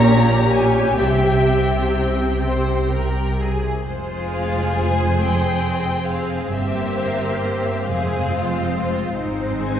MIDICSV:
0, 0, Header, 1, 6, 480
1, 0, Start_track
1, 0, Key_signature, -4, "minor"
1, 0, Tempo, 955414
1, 495, Time_signature, 6, 3, 24, 8
1, 1936, Tempo, 911854
1, 2416, Tempo, 888889
1, 3856, Tempo, 869565
1, 5162, End_track
2, 0, Start_track
2, 0, Title_t, "Violin section"
2, 0, Program_c, 0, 48
2, 0, Note_on_c, 0, 82, 106
2, 251, Note_off_c, 0, 82, 0
2, 258, Note_on_c, 0, 80, 88
2, 497, Note_off_c, 0, 80, 0
2, 505, Note_on_c, 0, 79, 84
2, 1686, Note_off_c, 0, 79, 0
2, 2185, Note_on_c, 0, 77, 61
2, 2404, Note_off_c, 0, 77, 0
2, 2426, Note_on_c, 0, 80, 67
2, 2663, Note_off_c, 0, 80, 0
2, 2671, Note_on_c, 0, 79, 73
2, 3128, Note_on_c, 0, 77, 68
2, 3137, Note_off_c, 0, 79, 0
2, 3369, Note_off_c, 0, 77, 0
2, 3375, Note_on_c, 0, 76, 69
2, 3850, Note_off_c, 0, 76, 0
2, 3858, Note_on_c, 0, 72, 59
2, 3978, Note_off_c, 0, 72, 0
2, 3988, Note_on_c, 0, 76, 62
2, 4093, Note_on_c, 0, 77, 62
2, 4105, Note_off_c, 0, 76, 0
2, 4802, Note_off_c, 0, 77, 0
2, 5064, Note_on_c, 0, 80, 63
2, 5162, Note_off_c, 0, 80, 0
2, 5162, End_track
3, 0, Start_track
3, 0, Title_t, "Violin section"
3, 0, Program_c, 1, 48
3, 0, Note_on_c, 1, 67, 74
3, 0, Note_on_c, 1, 73, 87
3, 478, Note_off_c, 1, 73, 0
3, 508, Note_on_c, 1, 76, 65
3, 1156, Note_off_c, 1, 67, 0
3, 1158, Note_off_c, 1, 76, 0
3, 1232, Note_on_c, 1, 72, 63
3, 1450, Note_off_c, 1, 72, 0
3, 1471, Note_on_c, 1, 70, 60
3, 1707, Note_off_c, 1, 70, 0
3, 1717, Note_on_c, 1, 68, 52
3, 1946, Note_off_c, 1, 68, 0
3, 1951, Note_on_c, 1, 72, 52
3, 1952, Note_on_c, 1, 68, 54
3, 3356, Note_off_c, 1, 68, 0
3, 3356, Note_off_c, 1, 72, 0
3, 3388, Note_on_c, 1, 67, 51
3, 3390, Note_on_c, 1, 72, 51
3, 4095, Note_off_c, 1, 67, 0
3, 4096, Note_off_c, 1, 72, 0
3, 4112, Note_on_c, 1, 72, 48
3, 4116, Note_on_c, 1, 68, 51
3, 4348, Note_on_c, 1, 65, 49
3, 4350, Note_off_c, 1, 68, 0
3, 4576, Note_off_c, 1, 65, 0
3, 4582, Note_on_c, 1, 65, 47
3, 4812, Note_off_c, 1, 72, 0
3, 4816, Note_off_c, 1, 65, 0
3, 4822, Note_on_c, 1, 63, 54
3, 4823, Note_on_c, 1, 72, 52
3, 5162, Note_off_c, 1, 63, 0
3, 5162, Note_off_c, 1, 72, 0
3, 5162, End_track
4, 0, Start_track
4, 0, Title_t, "Viola section"
4, 0, Program_c, 2, 48
4, 0, Note_on_c, 2, 61, 101
4, 0, Note_on_c, 2, 67, 72
4, 475, Note_off_c, 2, 61, 0
4, 506, Note_on_c, 2, 60, 68
4, 1818, Note_off_c, 2, 60, 0
4, 1820, Note_off_c, 2, 67, 0
4, 1941, Note_on_c, 2, 65, 57
4, 1943, Note_on_c, 2, 56, 56
4, 2639, Note_off_c, 2, 65, 0
4, 2640, Note_off_c, 2, 56, 0
4, 2661, Note_on_c, 2, 60, 39
4, 2662, Note_off_c, 2, 60, 0
4, 2662, Note_on_c, 2, 60, 50
4, 3358, Note_off_c, 2, 60, 0
4, 3370, Note_on_c, 2, 58, 53
4, 3372, Note_on_c, 2, 60, 53
4, 4087, Note_off_c, 2, 60, 0
4, 4101, Note_off_c, 2, 58, 0
4, 4103, Note_on_c, 2, 56, 51
4, 4105, Note_on_c, 2, 60, 48
4, 4807, Note_off_c, 2, 56, 0
4, 4808, Note_off_c, 2, 60, 0
4, 4820, Note_on_c, 2, 56, 53
4, 4820, Note_on_c, 2, 60, 50
4, 5162, Note_off_c, 2, 56, 0
4, 5162, Note_off_c, 2, 60, 0
4, 5162, End_track
5, 0, Start_track
5, 0, Title_t, "Cello section"
5, 0, Program_c, 3, 48
5, 0, Note_on_c, 3, 46, 104
5, 478, Note_off_c, 3, 46, 0
5, 498, Note_on_c, 3, 48, 73
5, 1814, Note_off_c, 3, 48, 0
5, 1939, Note_on_c, 3, 41, 61
5, 3350, Note_off_c, 3, 41, 0
5, 3369, Note_on_c, 3, 43, 54
5, 4085, Note_off_c, 3, 43, 0
5, 4098, Note_on_c, 3, 41, 51
5, 4816, Note_on_c, 3, 44, 57
5, 4819, Note_off_c, 3, 41, 0
5, 5162, Note_off_c, 3, 44, 0
5, 5162, End_track
6, 0, Start_track
6, 0, Title_t, "Double bass section"
6, 0, Program_c, 4, 48
6, 0, Note_on_c, 4, 34, 92
6, 476, Note_off_c, 4, 34, 0
6, 499, Note_on_c, 4, 36, 71
6, 1814, Note_off_c, 4, 36, 0
6, 1942, Note_on_c, 4, 29, 58
6, 3351, Note_off_c, 4, 29, 0
6, 3370, Note_on_c, 4, 31, 53
6, 4086, Note_off_c, 4, 31, 0
6, 4100, Note_on_c, 4, 29, 52
6, 4820, Note_off_c, 4, 29, 0
6, 4824, Note_on_c, 4, 32, 54
6, 5162, Note_off_c, 4, 32, 0
6, 5162, End_track
0, 0, End_of_file